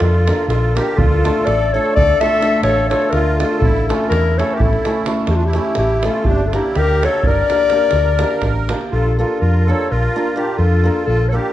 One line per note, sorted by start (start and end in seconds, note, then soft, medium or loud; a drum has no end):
0.00 0.30 F2 medium
0.00 0.46 F4 medium
0.00 0.48 A4 loud
0.00 davul high medium
0.14 davul high soft
0.27 0.45 A#3 medium
0.27 0.46 D4 medium
0.27 0.46 F4 soft
0.27 0.46 A#4 medium
0.27 davul high medium
0.48 0.78 A#1 medium
0.48 0.74 F4 medium
0.48 0.77 A4 medium
0.48 davul high medium
0.75 0.94 A#3 medium
0.75 0.95 D4 medium
0.75 0.95 F4 medium
0.75 0.98 G4 medium
0.75 0.97 A#4 medium
0.75 0.95 A#4 medium
0.75 davul high medium
0.96 1.28 D2 loud
0.96 1.47 F4 medium
0.96 1.47 A4 loud
0.96 davul low loud
1.13 davul high soft
1.24 1.43 A3 medium
1.24 1.44 D4 medium
1.24 1.44 F4 medium
1.24 1.44 A4 medium
1.24 davul high medium
1.44 1.77 A1 medium
1.44 1.71 A4 medium
1.44 1.75 D5 loud
1.44 davul high medium
1.73 1.93 A3 medium
1.73 1.93 D4 medium
1.73 1.94 F4 medium
1.73 1.95 A4 medium
1.73 1.94 A4 medium
1.73 1.95 C#5 medium
1.86 davul high soft
1.95 2.12 D2 medium
1.95 2.19 A4 medium
1.95 2.22 D5 loud
1.95 davul low medium
2.10 davul high soft
2.20 2.39 A3 medium
2.20 2.39 D4 medium
2.20 2.39 F4 medium
2.20 2.61 A4 medium
2.20 2.40 A4 medium
2.20 2.63 E5 loud
2.20 davul high medium
2.41 2.60 A3 medium
2.41 2.60 D4 medium
2.41 2.60 F4 medium
2.41 2.61 A4 medium
2.41 davul high medium
2.53 davul high soft
2.63 2.93 A1 medium
2.63 2.89 A4 medium
2.63 2.89 C#5 loud
2.63 davul high medium
2.77 davul high soft
2.89 3.09 A3 medium
2.89 3.09 D4 soft
2.89 3.09 F4 medium
2.89 3.11 A4 medium
2.89 3.10 A4 medium
2.89 3.12 C#5 medium
2.89 davul high medium
3.02 davul high soft
3.10 3.42 D2 medium
3.10 3.39 F4 medium
3.10 3.39 A#4 loud
3.10 davul high medium
3.38 3.58 A3 medium
3.38 3.59 D4 medium
3.38 3.62 F4 medium
3.38 3.59 F4 medium
3.38 3.58 A4 medium
3.38 3.59 A4 medium
3.38 davul high medium
3.59 3.91 A1 loud
3.59 3.88 E4 medium
3.59 3.86 A4 medium
3.59 davul low loud
3.77 davul high soft
3.88 4.08 A3 medium
3.88 4.08 C#4 medium
3.88 4.09 E4 medium
3.88 4.10 F4 medium
3.88 4.09 A4 medium
3.88 davul high medium
4.09 4.41 E2 loud
4.09 4.36 E4 medium
4.09 4.39 A#4 loud
4.09 davul high medium
4.37 4.57 A3 medium
4.37 4.58 C#4 medium
4.37 4.58 E4 medium
4.37 4.54 A4 medium
4.37 4.58 A4 medium
4.37 4.55 C#5 medium
4.37 davul high medium
4.51 4.61 G4 soft
4.51 4.62 A#4 medium
4.51 davul high soft
4.59 4.76 A1 medium
4.59 5.06 E4 medium
4.59 5.07 A4 loud
4.59 davul low medium
4.73 davul high soft
4.85 5.04 A3 medium
4.85 5.04 C#4 medium
4.85 5.04 E4 medium
4.85 5.04 A4 medium
4.85 davul high medium
5.06 5.24 A3 medium
5.06 5.25 C#4 medium
5.06 5.25 E4 medium
5.06 5.25 A4 medium
5.06 davul high medium
5.17 davul high soft
5.27 5.58 E2 medium
5.27 5.37 E4 medium
5.27 5.37 G4 medium
5.27 davul high medium
5.35 5.44 D4 medium
5.35 5.47 F4 medium
5.41 davul high soft
5.45 5.76 E4 medium
5.45 5.77 G4 medium
5.53 5.73 A3 medium
5.53 5.74 C#4 medium
5.53 5.74 E4 medium
5.53 5.74 A4 medium
5.53 davul high medium
5.65 davul high soft
5.75 6.07 A1 medium
5.75 6.03 E4 medium
5.75 6.07 G4 loud
5.75 davul high medium
6.03 6.23 A3 medium
6.03 6.24 C#4 medium
6.03 6.24 E4 medium
6.03 6.28 A4 medium
6.03 6.24 A4 medium
6.03 davul high medium
6.07 6.28 F4 medium
6.25 6.57 G1 loud
6.25 6.48 D4 medium
6.25 6.46 G4 medium
6.25 davul low medium
6.39 davul high soft
6.46 6.54 F4 soft
6.46 6.56 A4 medium
6.53 6.73 A#3 medium
6.53 6.73 D4 medium
6.53 6.76 E4 medium
6.53 6.79 G4 medium
6.53 6.73 G4 medium
6.53 6.73 A#4 medium
6.53 davul high medium
6.75 7.06 D2 medium
6.75 7.03 G4 medium
6.75 7.06 A#4 loud
6.75 davul high medium
6.89 davul high soft
7.03 7.22 A#3 medium
7.03 7.23 D4 medium
7.03 7.23 G4 medium
7.03 7.26 A4 loud
7.03 7.23 A#4 medium
7.03 7.29 C#5 medium
7.03 davul high medium
7.14 davul high soft
7.23 7.41 G1 medium
7.23 8.70 A#4 medium
7.23 davul low medium
7.27 8.71 D5 loud
7.50 7.68 A#3 medium
7.50 7.68 D4 medium
7.50 7.69 G4 medium
7.50 7.69 A#4 medium
7.50 davul high medium
7.60 davul high soft
7.70 7.89 A#3 medium
7.70 7.90 D4 medium
7.70 7.90 G4 medium
7.70 7.90 A#4 medium
7.70 davul high medium
7.91 8.22 D2 medium
7.91 davul high medium
8.18 8.38 A#3 medium
8.18 8.38 D4 medium
8.18 8.39 G4 medium
8.18 8.39 A#4 medium
8.18 davul high medium
8.31 davul high soft
8.42 8.73 A1 medium
8.42 davul high medium
8.42 davul low medium
8.69 8.88 A#3 medium
8.69 8.88 D4 medium
8.69 8.89 G4 medium
8.69 8.89 A#4 medium
8.69 davul high medium
8.81 davul high soft
8.91 9.22 A#1 loud
8.91 9.17 F4 medium
8.91 9.17 A4 loud
9.19 9.37 A#3 medium
9.19 9.38 D4 medium
9.19 9.39 F4 medium
9.19 9.38 F4 medium
9.19 9.43 A4 medium
9.19 9.38 A#4 medium
9.40 9.71 F2 medium
9.40 9.68 F4 medium
9.40 9.69 A#4 medium
9.66 9.87 A#3 medium
9.66 9.87 D4 medium
9.66 9.88 F4 medium
9.66 9.88 A4 medium
9.66 9.88 A#4 medium
9.66 9.93 C#5 medium
9.90 10.06 A#1 medium
9.90 10.36 F4 medium
9.90 10.35 A#4 medium
10.16 10.33 A#3 medium
10.16 10.33 D4 medium
10.16 10.34 F4 medium
10.16 10.34 A#4 medium
10.36 10.54 A#3 medium
10.36 10.54 D4 medium
10.36 10.54 F4 medium
10.36 10.56 G4 medium
10.36 10.59 A#4 medium
10.36 10.55 A#4 medium
10.56 10.88 F2 medium
10.56 11.06 F4 medium
10.56 11.05 A4 loud
10.83 11.03 A#3 medium
10.83 11.03 D4 medium
10.83 11.03 F4 medium
10.83 11.04 A#4 medium
11.05 11.37 A#1 medium
11.05 11.27 F4 medium
11.05 11.30 A4 loud
11.29 11.52 A#3 medium
11.29 11.35 A4 medium
11.29 11.35 C#5 medium
11.33 11.52 D4 medium
11.33 11.52 F4 medium
11.33 11.53 G4 medium
11.33 11.53 A#4 medium